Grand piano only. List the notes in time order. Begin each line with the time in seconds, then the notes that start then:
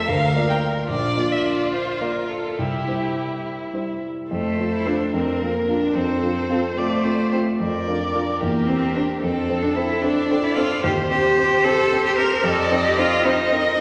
0.09 D2
0.35 A#3 F4 D5
0.89 A#1
1.16 A#3 F4 D5
2.01 A#3 F4 D5
2.59 C2
2.87 G3 E4 C5
3.73 G3 E4 C5
4.31 F2
4.59 A3 F4 C5
4.86 A3 F4 C5
5.14 F2
5.41 A#3 F4 A#4
5.69 A#3 F4 A#4
5.95 F2
6.22 C4 F4 A4
6.49 C4 F4 A4
6.77 C4 F4 A4
7.04 C4 F4 A4
7.32 C4 F4 A4
7.60 F2
7.88 D4 F4 A#4
8.15 D4 F4 A#4
8.42 E2
8.69 C4 G4 C5
8.96 C4 G4 C5
9.23 F2
9.49 C4 A4 C5
9.77 C4 A4 C5
10.03 C4 A4 C5
10.30 C4 A4 C5
10.57 C4 A4 C5
10.84 D#2
11.11 C4 G4 C5
11.37 C4 G4 C5
11.65 C4 G4 C5
11.92 C4 G4 C5
12.18 C4 G4 C5
12.44 F2
12.71 C4 D#4 C5
12.98 C4 D#4 C5
13.25 C4 D#4 C5
13.52 C4 D#4 C5